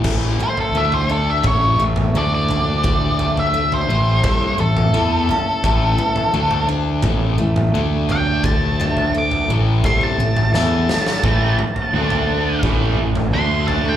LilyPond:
<<
  \new Staff \with { instrumentName = "Lead electric guitar" } { \time 4/4 \key d \major \tempo 4 = 86 r8 c''16 a'16 e''16 c''16 a'16 e''16 cis''8 r8 d''16 d''8.~ | d''8. e''8 c''4~ c''16 a'4.~ | a'4. r2 g''8 | a''4 d'''8 r8 c'''16 a''8. a''4~ |
a''2 r4 c'''8 a''16 g''16 | }
  \new Staff \with { instrumentName = "Steel-string acoustic guitar" } { \time 4/4 \key d \major a,8 a8 d8 d'8 a,8 a8 d8 d'8 | d8 a8 a8 a,8 a'8 a8 a'8 cis'8 | a,8 e8 d8 d'8 a,8 a8 d8 d'8 | d8 a8 a8 a,8 a'8 a8 a'8 cis'8 |
r1 | }
  \new Staff \with { instrumentName = "Distorted electric guitar" } { \clef bass \time 4/4 \key d \major <a, e a>8 r8 <d a d'>4 <a, e a>8 <a, e>8 <d a d'>4~ | <d a d'>4. <a, e a>8 <c g c'>8 <a, e>8 <e b e'>8 r8 | <a, e a>8 r8 <d a d'>4 <a, e a>8 <a, e>8 <d a d'>4~ | <d a d'>4. <a, e a>8 <c g c'>8 <a, e>8 <e b e'>8 r8 |
<a, e a>8 r8 <d a d'>4 <a, e a>8 <a, e>8 <d a d'>4 | }
  \new Staff \with { instrumentName = "Distorted electric guitar" } { \clef bass \time 4/4 \key d \major r1 | r1 | r1 | r1 |
<a, e a>8 r8 <d a d'>4 <a, e a>8 <a, e>8 <d a d'>4 | }
  \new Staff \with { instrumentName = "Picked electric bass" } { \clef bass \time 4/4 \key d \major a,,8 r8 d,4 a,,8 a,,8 d,4~ | d,4. a,,8 c,8 a,,8 e,8 r8 | a,,8 r8 d,4 a,,8 a,,8 d,4~ | d,4. a,,8 c,8 a,,8 e,8 r8 |
a,,8 r8 d,4 a,,8 a,,8 d,4 | }
  \new DrumStaff \with { instrumentName = "Drums" } \drummode { \time 4/4 <cymc bd tomfh>8 tomfh16 tomfh16 r16 tomfh8. <bd tomfh toml>8. <tomfh toml>16 r8 tomfh8 | <bd tomfh>8 tomfh16 tomfh16 r16 tomfh8. <bd tomfh toml>8. <tomfh toml>16 r8 tomfh8 | <bd tomfh>8 tomfh16 tomfh16 r16 tomfh8. <bd tomfh toml>8. <tomfh toml>16 r8 tomfh8 | <bd tomfh>8 toml16 tomfh16 r16 tomfh8. <bd tomfh>16 tomfh8 tomfh16 sn8 sn16 sn16 |
<bd tomfh>8 tomfh16 tomfh16 r16 tomfh8. <bd tomfh toml>8. <tomfh toml>16 r8 tomfh8 | }
>>